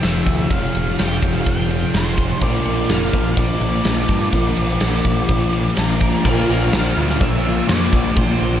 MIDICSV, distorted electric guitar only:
0, 0, Header, 1, 2, 480
1, 0, Start_track
1, 0, Tempo, 478851
1, 505, Time_signature, 4, 2, 24, 8
1, 8621, End_track
2, 0, Start_track
2, 0, Title_t, "Distorted electric guitar"
2, 0, Program_c, 0, 30
2, 0, Note_on_c, 0, 41, 76
2, 0, Note_on_c, 0, 48, 88
2, 0, Note_on_c, 0, 53, 89
2, 482, Note_off_c, 0, 41, 0
2, 494, Note_on_c, 0, 41, 79
2, 496, Note_off_c, 0, 48, 0
2, 511, Note_on_c, 0, 48, 93
2, 523, Note_off_c, 0, 53, 0
2, 527, Note_on_c, 0, 53, 85
2, 2406, Note_off_c, 0, 41, 0
2, 2406, Note_off_c, 0, 48, 0
2, 2410, Note_on_c, 0, 46, 86
2, 2419, Note_off_c, 0, 53, 0
2, 2423, Note_on_c, 0, 53, 82
2, 2439, Note_on_c, 0, 58, 92
2, 4317, Note_off_c, 0, 46, 0
2, 4321, Note_on_c, 0, 46, 78
2, 4338, Note_off_c, 0, 53, 0
2, 4342, Note_on_c, 0, 53, 96
2, 4354, Note_off_c, 0, 58, 0
2, 4358, Note_on_c, 0, 58, 97
2, 6240, Note_off_c, 0, 46, 0
2, 6250, Note_off_c, 0, 53, 0
2, 6254, Note_on_c, 0, 46, 99
2, 6259, Note_off_c, 0, 58, 0
2, 6272, Note_on_c, 0, 53, 91
2, 6283, Note_on_c, 0, 58, 108
2, 6498, Note_off_c, 0, 58, 0
2, 6502, Note_on_c, 0, 58, 71
2, 6527, Note_off_c, 0, 53, 0
2, 6531, Note_on_c, 0, 53, 61
2, 6740, Note_off_c, 0, 46, 0
2, 6744, Note_on_c, 0, 46, 75
2, 6753, Note_off_c, 0, 53, 0
2, 6757, Note_on_c, 0, 53, 73
2, 6769, Note_off_c, 0, 58, 0
2, 6773, Note_on_c, 0, 58, 81
2, 6975, Note_off_c, 0, 58, 0
2, 6979, Note_on_c, 0, 58, 67
2, 7004, Note_off_c, 0, 53, 0
2, 7008, Note_on_c, 0, 53, 64
2, 7215, Note_off_c, 0, 46, 0
2, 7219, Note_on_c, 0, 46, 109
2, 7229, Note_off_c, 0, 53, 0
2, 7233, Note_off_c, 0, 58, 0
2, 7233, Note_on_c, 0, 53, 111
2, 7245, Note_on_c, 0, 58, 108
2, 7447, Note_off_c, 0, 58, 0
2, 7459, Note_on_c, 0, 58, 66
2, 7486, Note_off_c, 0, 53, 0
2, 7490, Note_on_c, 0, 53, 60
2, 7681, Note_off_c, 0, 46, 0
2, 7693, Note_on_c, 0, 46, 84
2, 7708, Note_off_c, 0, 53, 0
2, 7710, Note_off_c, 0, 58, 0
2, 7712, Note_on_c, 0, 53, 86
2, 7722, Note_on_c, 0, 58, 89
2, 7927, Note_off_c, 0, 58, 0
2, 7939, Note_on_c, 0, 58, 79
2, 7962, Note_off_c, 0, 53, 0
2, 7966, Note_on_c, 0, 53, 67
2, 8164, Note_off_c, 0, 46, 0
2, 8176, Note_on_c, 0, 46, 92
2, 8185, Note_off_c, 0, 53, 0
2, 8189, Note_on_c, 0, 53, 95
2, 8190, Note_off_c, 0, 58, 0
2, 8202, Note_on_c, 0, 58, 104
2, 8399, Note_off_c, 0, 58, 0
2, 8411, Note_on_c, 0, 58, 79
2, 8436, Note_off_c, 0, 53, 0
2, 8441, Note_on_c, 0, 53, 58
2, 8621, Note_off_c, 0, 46, 0
2, 8621, Note_off_c, 0, 53, 0
2, 8621, Note_off_c, 0, 58, 0
2, 8621, End_track
0, 0, End_of_file